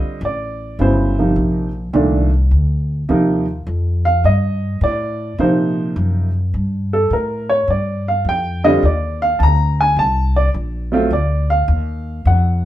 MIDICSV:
0, 0, Header, 1, 4, 480
1, 0, Start_track
1, 0, Tempo, 573614
1, 1622, Time_signature, 4, 2, 24, 8
1, 10586, End_track
2, 0, Start_track
2, 0, Title_t, "Upright piano"
2, 0, Program_c, 0, 0
2, 0, Note_on_c, 0, 50, 71
2, 0, Note_on_c, 0, 55, 65
2, 0, Note_on_c, 0, 60, 66
2, 0, Note_on_c, 0, 65, 76
2, 0, Note_on_c, 0, 75, 75
2, 147, Note_off_c, 0, 50, 0
2, 148, Note_off_c, 0, 55, 0
2, 149, Note_off_c, 0, 60, 0
2, 153, Note_off_c, 0, 65, 0
2, 160, Note_off_c, 0, 75, 0
2, 209, Note_on_c, 0, 74, 77
2, 642, Note_off_c, 0, 74, 0
2, 663, Note_on_c, 0, 49, 55
2, 668, Note_on_c, 0, 54, 50
2, 669, Note_on_c, 0, 59, 47
2, 678, Note_on_c, 0, 64, 58
2, 681, Note_on_c, 0, 72, 73
2, 949, Note_off_c, 0, 49, 0
2, 951, Note_off_c, 0, 54, 0
2, 952, Note_off_c, 0, 59, 0
2, 956, Note_off_c, 0, 64, 0
2, 990, Note_on_c, 0, 48, 54
2, 993, Note_on_c, 0, 53, 47
2, 997, Note_on_c, 0, 58, 45
2, 1003, Note_on_c, 0, 63, 55
2, 1119, Note_off_c, 0, 72, 0
2, 1402, Note_off_c, 0, 48, 0
2, 1404, Note_off_c, 0, 53, 0
2, 1406, Note_off_c, 0, 58, 0
2, 1409, Note_off_c, 0, 63, 0
2, 1618, Note_on_c, 0, 46, 59
2, 1627, Note_on_c, 0, 51, 57
2, 1630, Note_on_c, 0, 57, 57
2, 1633, Note_on_c, 0, 62, 64
2, 1908, Note_off_c, 0, 46, 0
2, 1913, Note_off_c, 0, 51, 0
2, 1915, Note_off_c, 0, 57, 0
2, 1916, Note_off_c, 0, 62, 0
2, 2583, Note_on_c, 0, 48, 62
2, 2590, Note_on_c, 0, 53, 57
2, 2597, Note_on_c, 0, 58, 60
2, 2603, Note_on_c, 0, 63, 69
2, 2872, Note_off_c, 0, 48, 0
2, 2876, Note_off_c, 0, 53, 0
2, 2880, Note_off_c, 0, 58, 0
2, 2882, Note_off_c, 0, 63, 0
2, 3391, Note_on_c, 0, 77, 94
2, 3546, Note_off_c, 0, 77, 0
2, 3560, Note_on_c, 0, 75, 76
2, 4003, Note_off_c, 0, 75, 0
2, 4047, Note_on_c, 0, 74, 84
2, 4486, Note_off_c, 0, 74, 0
2, 4509, Note_on_c, 0, 48, 60
2, 4513, Note_on_c, 0, 53, 51
2, 4517, Note_on_c, 0, 58, 52
2, 4521, Note_on_c, 0, 63, 68
2, 4522, Note_on_c, 0, 72, 72
2, 4964, Note_off_c, 0, 72, 0
2, 5246, Note_off_c, 0, 48, 0
2, 5248, Note_off_c, 0, 53, 0
2, 5250, Note_off_c, 0, 58, 0
2, 5253, Note_off_c, 0, 63, 0
2, 5802, Note_on_c, 0, 69, 76
2, 5953, Note_off_c, 0, 69, 0
2, 5968, Note_on_c, 0, 70, 70
2, 6270, Note_off_c, 0, 70, 0
2, 6272, Note_on_c, 0, 73, 85
2, 6427, Note_off_c, 0, 73, 0
2, 6447, Note_on_c, 0, 74, 74
2, 6749, Note_off_c, 0, 74, 0
2, 6764, Note_on_c, 0, 77, 83
2, 6913, Note_off_c, 0, 77, 0
2, 6935, Note_on_c, 0, 79, 90
2, 7229, Note_on_c, 0, 50, 71
2, 7232, Note_off_c, 0, 79, 0
2, 7234, Note_on_c, 0, 75, 90
2, 7235, Note_on_c, 0, 55, 69
2, 7241, Note_on_c, 0, 60, 65
2, 7244, Note_on_c, 0, 65, 76
2, 7373, Note_off_c, 0, 50, 0
2, 7377, Note_off_c, 0, 55, 0
2, 7380, Note_off_c, 0, 60, 0
2, 7381, Note_off_c, 0, 65, 0
2, 7387, Note_off_c, 0, 75, 0
2, 7409, Note_on_c, 0, 74, 74
2, 7708, Note_off_c, 0, 74, 0
2, 7716, Note_on_c, 0, 77, 96
2, 7857, Note_on_c, 0, 81, 63
2, 7868, Note_off_c, 0, 77, 0
2, 7890, Note_off_c, 0, 81, 0
2, 7892, Note_on_c, 0, 82, 96
2, 8189, Note_off_c, 0, 82, 0
2, 8205, Note_on_c, 0, 80, 90
2, 8351, Note_off_c, 0, 80, 0
2, 8359, Note_on_c, 0, 81, 90
2, 8661, Note_off_c, 0, 81, 0
2, 8673, Note_on_c, 0, 74, 87
2, 8766, Note_off_c, 0, 74, 0
2, 9137, Note_on_c, 0, 54, 70
2, 9144, Note_on_c, 0, 57, 70
2, 9148, Note_on_c, 0, 60, 71
2, 9154, Note_on_c, 0, 65, 80
2, 9283, Note_off_c, 0, 54, 0
2, 9287, Note_off_c, 0, 57, 0
2, 9289, Note_off_c, 0, 60, 0
2, 9292, Note_off_c, 0, 65, 0
2, 9315, Note_on_c, 0, 74, 77
2, 9616, Note_off_c, 0, 74, 0
2, 9625, Note_on_c, 0, 77, 96
2, 10226, Note_off_c, 0, 77, 0
2, 10268, Note_on_c, 0, 78, 79
2, 10586, Note_off_c, 0, 78, 0
2, 10586, End_track
3, 0, Start_track
3, 0, Title_t, "Upright bass"
3, 0, Program_c, 1, 32
3, 174, Note_on_c, 1, 33, 89
3, 643, Note_off_c, 1, 33, 0
3, 660, Note_on_c, 1, 31, 87
3, 1126, Note_off_c, 1, 31, 0
3, 1137, Note_on_c, 1, 34, 82
3, 1606, Note_off_c, 1, 34, 0
3, 1619, Note_on_c, 1, 36, 87
3, 2088, Note_off_c, 1, 36, 0
3, 2101, Note_on_c, 1, 38, 81
3, 2570, Note_off_c, 1, 38, 0
3, 2584, Note_on_c, 1, 39, 80
3, 3052, Note_off_c, 1, 39, 0
3, 3068, Note_on_c, 1, 41, 89
3, 3535, Note_off_c, 1, 41, 0
3, 3548, Note_on_c, 1, 43, 83
3, 4015, Note_off_c, 1, 43, 0
3, 4025, Note_on_c, 1, 45, 89
3, 4494, Note_off_c, 1, 45, 0
3, 4506, Note_on_c, 1, 46, 86
3, 4975, Note_off_c, 1, 46, 0
3, 4987, Note_on_c, 1, 42, 86
3, 5455, Note_off_c, 1, 42, 0
3, 5471, Note_on_c, 1, 43, 85
3, 5937, Note_off_c, 1, 43, 0
3, 5945, Note_on_c, 1, 45, 81
3, 6414, Note_off_c, 1, 45, 0
3, 6423, Note_on_c, 1, 43, 80
3, 6892, Note_off_c, 1, 43, 0
3, 6900, Note_on_c, 1, 41, 79
3, 7370, Note_off_c, 1, 41, 0
3, 7387, Note_on_c, 1, 39, 82
3, 7853, Note_off_c, 1, 39, 0
3, 7864, Note_on_c, 1, 38, 91
3, 8330, Note_off_c, 1, 38, 0
3, 8337, Note_on_c, 1, 36, 84
3, 8805, Note_off_c, 1, 36, 0
3, 8822, Note_on_c, 1, 34, 85
3, 9286, Note_off_c, 1, 34, 0
3, 9293, Note_on_c, 1, 38, 81
3, 9760, Note_off_c, 1, 38, 0
3, 9773, Note_on_c, 1, 39, 92
3, 10239, Note_off_c, 1, 39, 0
3, 10254, Note_on_c, 1, 41, 88
3, 10586, Note_off_c, 1, 41, 0
3, 10586, End_track
4, 0, Start_track
4, 0, Title_t, "Muted upright bass strokes"
4, 19, Note_on_c, 9, 29, 40
4, 103, Note_off_c, 9, 29, 0
4, 10586, End_track
0, 0, End_of_file